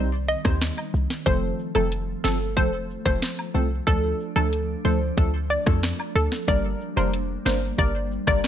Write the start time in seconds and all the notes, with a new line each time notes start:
Already playing: C2 D#3 G3 C4 C5
0.28 D#5, cabasa
0.45 D#2 G3 C4 D#4 C5, kick, cross-stick
0.61 snare, closed hi-hat
0.78 high woodblock
0.94 C2, cabasa
1.10 snare
1.26 F1 F3 A3 C4 A4 C5, kick, closed hi-hat
1.59 cabasa
1.75 F1 F3 A3 C4 A4, high woodblock
1.92 closed hi-hat
2.24 G1 F3 A3 C4 A4, snare, cabasa
2.57 F1 F3 A3 C4 A4 C5, kick, closed hi-hat
2.90 cabasa
3.05 F1 F3 A3 C4 A4 C5, kick, cross-stick
3.22 snare, closed hi-hat
3.39 high woodblock
3.54 C2 F3 A3 C4 A4, cabasa
3.87 D2 F3 A3 D4 A4, kick, closed hi-hat
4.20 cabasa
4.36 D2 F3 A3 D4 A4, high woodblock
4.53 closed hi-hat
4.85 D2 F3 A3 D4 A4 C5, cabasa
5.17 D2 F3 A3 D4 A4, kick, closed hi-hat
5.50 D5, cabasa
5.66 F2 F3 A3 D4 A4, kick, cross-stick
5.83 snare, closed hi-hat
6.00 high woodblock
6.15 D2 A4, cabasa
6.32 snare
6.48 G1 G3 A#3 D4 A#4 D5, kick, closed hi-hat
6.81 cabasa
6.96 F1 G3 A#3 D4 A#4 C5, high woodblock
7.14 closed hi-hat
7.45 G1 G3 A#3 D4 A#4 C5, snare, cabasa
7.78 G1 G3 A#3 D4 A#4 D5, kick, closed hi-hat
8.12 cabasa
8.27 G1 G3 A#3 D4 A#4 D5, kick, cross-stick
8.44 snare, closed hi-hat